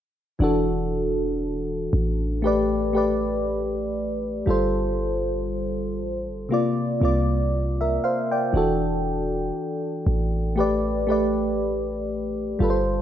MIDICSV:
0, 0, Header, 1, 3, 480
1, 0, Start_track
1, 0, Tempo, 1016949
1, 190, Time_signature, 4, 2, 24, 8
1, 6144, End_track
2, 0, Start_track
2, 0, Title_t, "FM electric piano"
2, 0, Program_c, 0, 5
2, 184, Note_on_c, 0, 52, 81
2, 191, Note_on_c, 0, 62, 73
2, 198, Note_on_c, 0, 66, 76
2, 206, Note_on_c, 0, 69, 88
2, 282, Control_c, 0, 64, 127
2, 984, Note_off_c, 0, 52, 0
2, 987, Note_off_c, 0, 62, 0
2, 991, Note_off_c, 0, 66, 0
2, 994, Note_off_c, 0, 69, 0
2, 1143, Note_on_c, 0, 57, 82
2, 1151, Note_on_c, 0, 67, 76
2, 1156, Control_c, 0, 64, 0
2, 1158, Note_on_c, 0, 71, 76
2, 1165, Note_on_c, 0, 74, 90
2, 1242, Control_c, 0, 64, 127
2, 1348, Note_off_c, 0, 57, 0
2, 1352, Note_off_c, 0, 67, 0
2, 1355, Note_off_c, 0, 71, 0
2, 1359, Note_off_c, 0, 74, 0
2, 1383, Note_on_c, 0, 57, 78
2, 1390, Note_on_c, 0, 67, 72
2, 1398, Note_on_c, 0, 71, 75
2, 1405, Note_on_c, 0, 74, 86
2, 1989, Note_off_c, 0, 57, 0
2, 1993, Note_off_c, 0, 67, 0
2, 1996, Note_off_c, 0, 71, 0
2, 2000, Note_off_c, 0, 74, 0
2, 2104, Note_on_c, 0, 55, 81
2, 2111, Note_on_c, 0, 65, 70
2, 2115, Control_c, 0, 64, 0
2, 2118, Note_on_c, 0, 69, 74
2, 2125, Note_on_c, 0, 72, 94
2, 2193, Control_c, 0, 64, 127
2, 2904, Note_off_c, 0, 55, 0
2, 2907, Note_off_c, 0, 65, 0
2, 2911, Note_off_c, 0, 69, 0
2, 2914, Note_off_c, 0, 72, 0
2, 3063, Note_on_c, 0, 48, 77
2, 3071, Note_on_c, 0, 58, 73
2, 3076, Control_c, 0, 64, 0
2, 3078, Note_on_c, 0, 65, 77
2, 3085, Note_on_c, 0, 74, 85
2, 3159, Control_c, 0, 64, 127
2, 3267, Note_off_c, 0, 48, 0
2, 3271, Note_off_c, 0, 58, 0
2, 3275, Note_off_c, 0, 65, 0
2, 3278, Note_off_c, 0, 74, 0
2, 3304, Note_on_c, 0, 48, 79
2, 3311, Note_on_c, 0, 58, 68
2, 3318, Note_on_c, 0, 65, 71
2, 3326, Note_on_c, 0, 74, 90
2, 3558, Note_off_c, 0, 74, 0
2, 3685, Note_on_c, 0, 76, 63
2, 3688, Note_on_c, 0, 70, 51
2, 3787, Note_off_c, 0, 76, 0
2, 3789, Note_off_c, 0, 70, 0
2, 3794, Note_on_c, 0, 77, 71
2, 3798, Note_on_c, 0, 72, 60
2, 3909, Note_off_c, 0, 48, 0
2, 3913, Note_off_c, 0, 58, 0
2, 3915, Note_off_c, 0, 77, 0
2, 3916, Note_off_c, 0, 65, 0
2, 3917, Note_off_c, 0, 72, 0
2, 3924, Note_on_c, 0, 79, 66
2, 3927, Note_on_c, 0, 74, 54
2, 4023, Note_on_c, 0, 52, 81
2, 4030, Note_on_c, 0, 62, 70
2, 4035, Control_c, 0, 64, 0
2, 4038, Note_on_c, 0, 66, 71
2, 4045, Note_on_c, 0, 69, 88
2, 4126, Control_c, 0, 64, 127
2, 4150, Note_off_c, 0, 79, 0
2, 4152, Note_off_c, 0, 74, 0
2, 4823, Note_off_c, 0, 52, 0
2, 4827, Note_off_c, 0, 62, 0
2, 4831, Note_off_c, 0, 66, 0
2, 4834, Note_off_c, 0, 69, 0
2, 4982, Note_on_c, 0, 57, 81
2, 4991, Note_on_c, 0, 67, 74
2, 4997, Control_c, 0, 64, 0
2, 4997, Note_on_c, 0, 71, 75
2, 5005, Note_on_c, 0, 74, 92
2, 5084, Control_c, 0, 64, 127
2, 5187, Note_off_c, 0, 57, 0
2, 5191, Note_off_c, 0, 67, 0
2, 5195, Note_off_c, 0, 71, 0
2, 5198, Note_off_c, 0, 74, 0
2, 5224, Note_on_c, 0, 57, 81
2, 5232, Note_on_c, 0, 67, 70
2, 5238, Note_on_c, 0, 71, 73
2, 5246, Note_on_c, 0, 74, 84
2, 5829, Note_off_c, 0, 57, 0
2, 5833, Note_off_c, 0, 67, 0
2, 5837, Note_off_c, 0, 71, 0
2, 5840, Note_off_c, 0, 74, 0
2, 5942, Note_on_c, 0, 55, 83
2, 5949, Note_on_c, 0, 65, 72
2, 5957, Control_c, 0, 64, 0
2, 5957, Note_on_c, 0, 69, 74
2, 5964, Note_on_c, 0, 71, 70
2, 5990, Note_off_c, 0, 71, 0
2, 5994, Note_on_c, 0, 72, 90
2, 6031, Control_c, 0, 64, 127
2, 6144, Note_off_c, 0, 55, 0
2, 6144, Note_off_c, 0, 65, 0
2, 6144, Note_off_c, 0, 69, 0
2, 6144, Note_off_c, 0, 72, 0
2, 6144, End_track
3, 0, Start_track
3, 0, Title_t, "808-style bass"
3, 0, Program_c, 1, 38
3, 189, Note_on_c, 1, 28, 106
3, 891, Note_off_c, 1, 28, 0
3, 911, Note_on_c, 1, 33, 103
3, 2092, Note_off_c, 1, 33, 0
3, 2111, Note_on_c, 1, 31, 102
3, 2831, Note_on_c, 1, 33, 92
3, 2839, Note_off_c, 1, 31, 0
3, 2960, Note_on_c, 1, 31, 93
3, 2967, Note_off_c, 1, 33, 0
3, 3065, Note_off_c, 1, 31, 0
3, 3311, Note_on_c, 1, 36, 103
3, 3772, Note_off_c, 1, 36, 0
3, 4030, Note_on_c, 1, 28, 108
3, 4491, Note_off_c, 1, 28, 0
3, 4751, Note_on_c, 1, 33, 106
3, 5932, Note_off_c, 1, 33, 0
3, 5949, Note_on_c, 1, 31, 106
3, 6144, Note_off_c, 1, 31, 0
3, 6144, End_track
0, 0, End_of_file